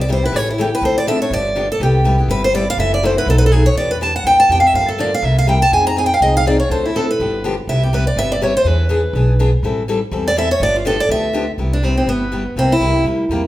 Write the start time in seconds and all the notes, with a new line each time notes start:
Already playing: C2
0.01 D5
0.09 C3 G3 B3 E4 G4 C5
0.22 B3 E4 G4 B4
0.32 A1 C#3 E3 A3 C#4 G4 C#5
0.50 E4
0.58 C#3 E3 A3 C#4 G4
0.75 B4
0.81 D2 D3 F3 C4 D4 A4 C5
0.98 D5
1.07 D3 F3 C4 D4 A4 E5
1.21 C4 D4 A4 C#5
1.30 G1 D3 F3 B3 D4 G4 D5
1.56 D3 F3 B3 D4 G4
1.72 A4
1.80 C2 C3 G3 B3 E4 G4
2.04 C3 G3 B3 E4 G4
2.18 B3 E4 G4
2.28 G1 C3 G3 B3 E4 G4 B4
2.44 C5
2.53 C3 G3 B3 E4 G4 D5
2.70 F5
2.77 F#1 C3 E3 A3 E4 F#4 E5
2.94 D5
3.03 C3 E3 A3 E4 F#4 C5
3.16 A3 E4 F#4 B4
3.26 B1 B2 F#3 A3 D#4 F#4 A4
3.38 B4
3.46 A4
3.52 B2 F#3 A3 D#4 F#4 G#4
3.66 C#5
3.75 E2 E3 B3 D4 G4 D5
3.91 B4
4.01 E3 B3 D4 G4 A5
4.16 F#5
4.24 E2 E3 B3 D4 G4 G5
4.40 A5
4.49 F2 E3 B3 D4 G4 G5
4.60 F5
4.67 E5
4.73 G2 D3 F3 A#3 D4 G4 F5
4.88 A4
4.98 D3 F3 A#3 D4 G4 D5
5.14 F5
5.22 C2 C3 G3 A#3 E4 G4 E5
5.38 F5
5.47 C3 G3 A#3 E4 G4 G5
5.62 A5
5.72 F2 F3 C4 D#4 G#4 G#5
5.87 A#5
5.96 F3 C4 D#4 G#4 G#5
6.06 G5
6.14 F5
6.21 C2 F3 C4 D#4 G#4 D#5
6.37 F5
6.46 F3 C4 D#4 G#4 D5
6.60 C#5
6.70 D2 D3 F3 C4 D4 A4 C5
6.86 E4
6.96 D3 F3 C4 D4 A4
7.11 B4
7.20 G1 D3 F3 B3 D4 G4
7.44 D3 F3 B3 D4 G4
7.67 C2 C3 G3 B3 E4 G4 E5
7.83 G4
7.93 C3 G3 B3 E4 G4 B4
8.07 D5
8.16 G1 C3 G3 B3 E4 G4 E5
8.32 D5
8.41 C3 G3 B3 E4 G4 C#5
8.57 C5
8.64 E2 E3 B3 D4 G#4 B4
8.89 E3 B3 D4 G#4
9.13 B1 E3 B3 D4 G#4
9.39 E3 B3 D4 G#4
9.63 A1 E3 G3 C4 E4 A4
9.88 E3 G3 C4 E4 A4
10.11 E2 E3 G3 C4 E4 A4
10.28 D5
10.36 E3 G3 C4 E4 A4 E5
10.51 C#5
10.60 G1 D3 F3 B3 D4 G4 D5
10.76 F4
10.85 D3 F3 B3 D4 G4 A4
11.00 D5
11.09 D2 D3 F3 B3 D4 G4 E5
11.33 D3 F3 B3 D4 G4
11.58 C2 C3 G3 B3 E4 G4
11.73 D4
11.83 C3 G3 B3 C4 E4 G4
11.96 B3 C4 E4 G4
12.06 G1 C3 G3 B3 E4 G4
12.32 C3 G3 B3 E4 G4
12.56 C2 C3 G3 A#3 C4 E4 G4
12.72 E4
12.80 C2 C3 G3 A#3 E4 G4
12.94 A#3 E4 G4
13.04 D2 C3 G3 A#3 E4 G4
13.29 E2 C3 G3 A#3 E4 G4